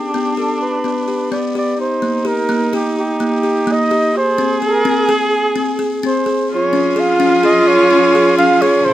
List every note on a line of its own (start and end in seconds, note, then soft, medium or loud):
0.00 1.35 D4 medium
0.00 0.13 G4 medium
0.14 0.30 B3 medium
0.14 0.36 G4 medium
0.37 0.53 G4 medium
0.37 0.60 A4 medium
0.62 1.29 B4 medium
0.84 1.00 B3 medium
1.08 1.24 G4 medium
1.32 1.47 B3 medium
1.32 1.80 B3 medium
1.32 1.54 D5 medium
1.55 1.71 G4 medium
1.55 1.79 D5 medium
1.80 4.19 D#4 medium
1.80 2.28 C5 medium
2.02 2.18 A#3 medium
2.25 2.41 G4 medium
2.25 2.74 A#4 medium
2.49 2.65 A#3 medium
2.73 2.89 G4 medium
2.73 2.96 G4 medium
2.99 3.74 G4 medium
3.20 3.36 A#3 medium
3.43 3.59 G4 medium
3.67 3.83 A#3 medium
3.73 4.17 D#5 loud
3.91 4.07 G4 medium
4.18 6.28 G#4 loud
4.18 4.60 C5 medium
4.38 4.54 C4 medium
4.62 4.77 G#4 medium
4.66 5.13 A#4 medium
4.85 5.01 C4 medium
5.09 5.24 G#4 medium
5.09 5.33 G#4 medium
5.34 5.74 G#4 medium
5.56 5.71 C4 medium
5.79 5.95 G#4 medium
6.03 6.19 C4 medium
6.03 6.49 C5 medium
6.26 6.42 G#4 medium
6.50 8.83 F3 medium
6.50 8.83 C#4 medium
6.50 8.88 F4 loud
6.50 8.83 G#4 medium
6.54 7.01 C#5 medium
6.73 6.89 C#4 medium
6.96 7.12 G#4 medium
6.96 7.44 F5 loud
7.20 7.36 C#4 medium
7.43 7.59 G#4 medium
7.43 7.69 D#5 medium
7.68 8.37 C#5 loud
7.91 8.06 C#4 medium
8.15 8.30 G#4 medium
8.38 8.54 C#4 medium
8.38 8.63 F5 loud
8.62 8.77 G#4 medium
8.62 8.86 C#5 medium
8.84 8.94 B2 medium
8.84 8.94 C3 medium
8.84 8.94 E4 medium
8.84 8.94 A4 medium
8.84 8.94 C5 loud